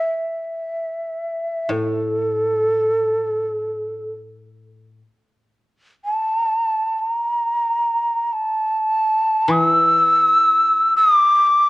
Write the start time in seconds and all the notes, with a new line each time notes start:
Already playing: E5
1.69 A2 A4
6.05 A5
6.99 A5
7.12 A#5
8.33 A5
9.48 E3 E6
10.97 D#6
11.15 D6